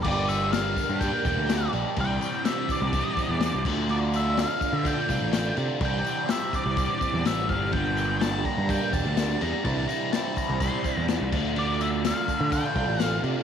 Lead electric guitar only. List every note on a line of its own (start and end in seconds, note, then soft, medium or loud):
0.03 0.26 D5 medium
0.29 0.52 E5 medium
0.52 1.00 F5 medium
1.01 1.69 G5 loud
2.00 2.44 G5 loud
2.46 2.70 E5 medium
2.72 3.63 D5 medium
3.91 3.97 D5 medium
4.16 4.40 E5 medium
4.40 4.76 F5 medium
4.76 4.87 E5 medium
4.88 5.55 G5 medium
5.85 6.30 G5 medium
6.31 6.55 E5 medium
6.55 7.29 D5 medium
7.27 7.49 E5 medium
7.49 7.73 F5 medium
7.73 8.23 G5 loud
8.21 8.44 A5 loud
8.46 8.70 A#5 medium
8.70 8.94 G5 medium
8.93 9.41 A5 medium
9.42 9.64 A#5 medium
9.65 9.87 A5 loud
9.88 10.12 A#5 loud
10.12 10.37 A5 loud
10.37 10.60 A#5 medium
10.60 11.05 C6 loud
11.59 11.82 D5 medium
11.81 11.88 E5 medium
12.07 12.39 F5 medium
12.39 12.50 E5 medium
12.52 13.02 G5 medium
13.02 13.20 F5 medium